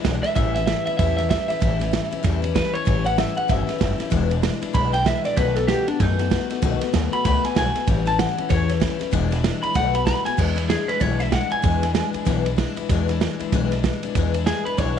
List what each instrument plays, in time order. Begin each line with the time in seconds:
0.04 upright bass B1, steel-string acoustic guitar E3 G#3 D4 E4, kick, snare, ride
0.23 steel-string acoustic guitar E3 G#3 D4 E4, clean electric guitar E5, muted upright bass stroke, snare, ride
0.35 upright bass A1, steel-string acoustic guitar A2 E3 G3 C#4 E4, clean electric guitar E5, kick, ride
0.55 steel-string acoustic guitar G3 C#4 E4, clean electric guitar E5, snare, ride
0.66 steel-string acoustic guitar E3 G3 C#4 E4, clean electric guitar E5, snare, ride
0.86 steel-string acoustic guitar G3 C#4 E4, clean electric guitar E5, muted upright bass stroke, ride
0.97 upright bass E2, steel-string acoustic guitar A2 E3 G3 C#4 E4, clean electric guitar E5, kick, ride
1.17 steel-string acoustic guitar G3 C#4 E4, clean electric guitar E5, snare, ride
1.29 steel-string acoustic guitar E3 G3 C#4 E4, clean electric guitar E5, kick, snare, ride
1.48 steel-string acoustic guitar G3 C#4 E4, clean electric guitar E5, muted upright bass stroke, snare, ride
1.60 upright bass A1, steel-string acoustic guitar A2 E3 G3 C#4 E4, kick, ride
1.79 steel-string acoustic guitar G3 C#4 E4, snare, ride
1.92 steel-string acoustic guitar E3 G3 C#4 E4, snare, ride
2.11 steel-string acoustic guitar G3 C#4 E4, muted upright bass stroke, ride
2.23 upright bass E2, steel-string acoustic guitar A2 E3 G3 C#4 E4, kick, snare, ride
2.42 steel-string acoustic guitar G3 C#4 E4, ride
2.55 steel-string acoustic guitar E3 G3 C#4 E4, clean electric guitar B4, kick, snare, ride
2.73 steel-string acoustic guitar G3 C#4 E4, clean electric guitar C#5, muted upright bass stroke, ride
2.85 upright bass A1, steel-string acoustic guitar A2 E3 G3 C#4 E4, kick, ride
3.04 steel-string acoustic guitar G3 C#4 E4, clean electric guitar F#5, ride
3.17 steel-string acoustic guitar E3 G3 C#4 E4, clean electric guitar E5, snare, ride
3.35 steel-string acoustic guitar G3 C#4 E4, clean electric guitar F#5, muted upright bass stroke, ride
3.48 upright bass G1, steel-string acoustic guitar A2 E3 G3 C#4 E4, clean electric guitar E5, kick, snare, ride
3.67 steel-string acoustic guitar G3 C#4 E4, snare, ride
3.78 upright bass F#1, steel-string acoustic guitar E3 G3 C#4 E4, kick, snare, ride
3.98 steel-string acoustic guitar G3 C#4 E4, muted upright bass stroke, snare, ride
4.10 upright bass E1, steel-string acoustic guitar E2 B2 E3 G#3 D4 E4, kick, ride
4.29 steel-string acoustic guitar E3 G#3 D4 E4, ride
4.42 steel-string acoustic guitar E3 G#3 D4 E4, snare, ride
4.61 steel-string acoustic guitar E3 G#3 D4 E4, muted upright bass stroke, ride
4.73 upright bass B1, steel-string acoustic guitar E2 B2 E3 G#3 D4 E4, clean electric guitar B5, kick, ride
4.92 steel-string acoustic guitar E3 G#3 D4 E4, clean electric guitar G5, snare, ride
5.05 steel-string acoustic guitar E3 G#3 D4 E4, clean electric guitar E5, kick, snare, ride
5.24 steel-string acoustic guitar E3 G#3 D4 E4, clean electric guitar D5, muted upright bass stroke, snare, ride
5.37 upright bass B1, steel-string acoustic guitar B2 D#3 A3 B3 F#4, clean electric guitar B4, kick, ride
5.56 steel-string acoustic guitar A3 B3 F#4, clean electric guitar A4, snare, ride
5.67 steel-string acoustic guitar D#3 A3 B3 F#4, clean electric guitar G4, snare, ride
5.87 steel-string acoustic guitar A3 B3 F#4, clean electric guitar D4, muted upright bass stroke, ride
6.00 upright bass F#2, steel-string acoustic guitar B2 D#3 A3 B3 F#4, clean electric guitar D#4, kick, snare, ride
6.19 steel-string acoustic guitar A3 B3 F#4, snare, ride
6.30 steel-string acoustic guitar D#3 A3 B3 F#4, kick, snare, ride
6.50 steel-string acoustic guitar A3 B3 F#4, muted upright bass stroke, snare, ride
6.62 upright bass B1, steel-string acoustic guitar B2 D#3 A3 B3 F#4, kick, ride
6.81 steel-string acoustic guitar A3 B3 F#4, muted upright bass stroke, snare, ride
6.93 upright bass D#2, steel-string acoustic guitar D#3 A3 B3 F#4, snare, ride
7.12 steel-string acoustic guitar A3 B3 F#4, clean electric guitar B5, ride
7.24 upright bass C#2, steel-string acoustic guitar B2 D#3 A3 B3 F#4, clean electric guitar B5, kick, snare, ride
7.43 steel-string acoustic guitar A3 B3 F#4, clean electric guitar G#5, snare, ride
7.55 upright bass B1, steel-string acoustic guitar D#3 A3 B3 F#4, clean electric guitar G#5, kick, snare, ride
7.74 steel-string acoustic guitar A3 B3 F#4, muted upright bass stroke, snare, ride
7.87 upright bass A1, steel-string acoustic guitar A2 E3 G3 C#4 E4, kick, ride
8.06 steel-string acoustic guitar G3 C#4 E4, clean electric guitar A5, snare, ride
8.18 steel-string acoustic guitar E3 G3 C#4 E4, clean electric guitar F#5, snare, ride
8.37 steel-string acoustic guitar G3 C#4 E4, muted upright bass stroke, ride
8.49 upright bass E2, steel-string acoustic guitar A2 E3 G3 C#4 E4, clean electric guitar C#5, kick, snare, ride
8.68 steel-string acoustic guitar G3 C#4 E4, snare, ride
8.80 steel-string acoustic guitar E3 G3 C#4 E4, kick, snare, ride
8.99 steel-string acoustic guitar G3 C#4 E4, muted upright bass stroke, snare, ride
9.11 upright bass E1, steel-string acoustic guitar E2 B2 E3 G#3 D4 E4, kick, ride
9.31 steel-string acoustic guitar E3 G#3 D4 E4, snare, ride
9.43 steel-string acoustic guitar E3 G#3 D4 E4, snare, ride
9.62 steel-string acoustic guitar E3 G#3 D4 E4, clean electric guitar B5, muted upright bass stroke, ride
9.74 upright bass B1, steel-string acoustic guitar B2 D#3 A3 B3 F#4, clean electric guitar F#5, kick, ride
9.93 steel-string acoustic guitar A3 B3 F#4, clean electric guitar B5, ride
10.06 steel-string acoustic guitar D#3 A3 B3 F#4, clean electric guitar B5, kick, snare, ride
10.25 steel-string acoustic guitar A3 B3 F#4, clean electric guitar G#5, muted upright bass stroke, snare, ride
10.37 steel-string acoustic guitar E2 B2 E3 G#3 D4 E4, upright bass E2, kick, crash
10.56 steel-string acoustic guitar E3 G#3 D4 E4, ride
10.68 steel-string acoustic guitar E3 G#3 D4 E4, clean electric guitar G#4, snare, ride
10.87 steel-string acoustic guitar E3 G#3 D4 E4, clean electric guitar B4, muted upright bass stroke, snare, ride
11.00 upright bass B1, steel-string acoustic guitar E2 B2 E3 G#3 D4 E4, clean electric guitar C#5, kick, ride
11.19 steel-string acoustic guitar E3 G#3 D4 E4, clean electric guitar E5, snare, ride
11.31 steel-string acoustic guitar E3 G#3 D4 E4, clean electric guitar F#5, kick, snare, ride
11.50 steel-string acoustic guitar E3 G#3 D4 E4, clean electric guitar G#5, muted upright bass stroke, ride
11.62 steel-string acoustic guitar E2 B2 E3 G#3 D4 E4, upright bass E2, kick, ride
11.82 steel-string acoustic guitar E3 G#3 D4 E4, snare, ride
11.94 steel-string acoustic guitar E3 G#3 D4 E4, snare, ride
12.13 steel-string acoustic guitar E3 G#3 D4 E4, muted upright bass stroke, ride
12.25 upright bass B1, steel-string acoustic guitar E2 B2 E3 G#3 D4 E4, kick, snare, ride
12.45 steel-string acoustic guitar E3 G#3 D4 E4, ride
12.56 steel-string acoustic guitar E3 G#3 D4 E4, kick, snare, ride
12.76 steel-string acoustic guitar E3 G#3 D4 E4, muted upright bass stroke, ride
12.89 upright bass E2, steel-string acoustic guitar E2 B2 E3 G#3 D4 E4, kick, ride
13.08 steel-string acoustic guitar E3 G#3 D4 E4, snare, ride
13.20 steel-string acoustic guitar E3 G#3 D4 E4, snare, ride
13.39 steel-string acoustic guitar E3 G#3 D4 E4, muted upright bass stroke, ride
13.52 upright bass B1, steel-string acoustic guitar E2 B2 E3 G#3 D4 E4, kick, snare, ride
13.71 steel-string acoustic guitar E3 G#3 D4 E4, snare, ride
13.83 steel-string acoustic guitar E3 G#3 D4 E4, kick, snare, ride
14.03 steel-string acoustic guitar E3 G#3 D4 E4, muted upright bass stroke, ride
14.15 upright bass E2, steel-string acoustic guitar E2 B2 E3 G#3 D4 E4, kick, ride
14.34 steel-string acoustic guitar E3 G#3 D4 E4, ride
14.46 steel-string acoustic guitar E3 G#3 D4 E4, clean electric guitar G#4, snare, ride
14.65 steel-string acoustic guitar E3 G#3 D4 E4, clean electric guitar B4, muted upright bass stroke, ride
14.77 upright bass B1, steel-string acoustic guitar E2 B2 E3 G#3 D4 E4, clean electric guitar C#5, kick, ride